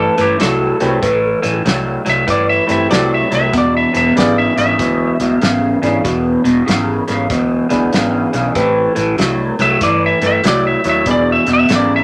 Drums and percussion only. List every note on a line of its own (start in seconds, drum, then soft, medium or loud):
0.18 snare soft
0.18 closed hi-hat medium
0.40 snare medium
0.40 closed hi-hat medium
0.80 snare soft
0.80 closed hi-hat medium
1.03 kick loud
1.03 snare soft
1.03 closed hi-hat medium
1.43 snare soft
1.43 closed hi-hat medium
1.66 snare medium
1.66 closed hi-hat medium
2.06 snare soft
2.06 closed hi-hat medium
2.28 kick loud
2.28 snare soft
2.28 closed hi-hat medium
2.69 snare soft
2.69 closed hi-hat medium
2.91 snare loud
2.91 closed hi-hat medium
3.32 snare soft
3.32 closed hi-hat medium
3.53 kick loud
3.53 snare soft
3.53 closed hi-hat medium
3.95 snare soft
3.95 closed hi-hat medium
4.17 snare loud
4.17 closed hi-hat medium
4.58 snare soft
4.58 closed hi-hat medium
4.79 kick loud
4.79 snare soft
4.79 closed hi-hat medium
5.20 snare soft
5.20 closed hi-hat medium
5.42 snare loud
5.42 closed hi-hat medium
5.83 snare soft
5.83 closed hi-hat medium
6.05 kick loud
6.05 snare soft
6.05 closed hi-hat medium
6.45 snare soft
6.45 closed hi-hat medium
6.68 snare loud
6.68 closed hi-hat medium
7.08 snare soft
7.08 closed hi-hat medium
7.30 kick loud
7.30 snare soft
7.30 closed hi-hat medium
7.70 snare soft
7.70 closed hi-hat medium
7.93 snare loud
7.93 closed hi-hat medium
8.33 snare soft
8.33 closed hi-hat medium
8.55 kick loud
8.55 snare soft
8.55 closed hi-hat medium
8.96 snare soft
8.96 closed hi-hat medium
9.18 snare loud
9.18 closed hi-hat medium
9.59 snare soft
9.59 closed hi-hat medium
9.81 kick loud
9.81 snare soft
9.81 closed hi-hat medium
10.22 snare soft
10.22 closed hi-hat medium
10.44 snare loud
10.44 closed hi-hat medium
10.84 snare soft
10.84 closed hi-hat medium
11.06 kick loud
11.06 snare soft
11.06 closed hi-hat medium
11.47 snare soft
11.47 closed hi-hat medium
11.69 snare medium
11.69 closed hi-hat medium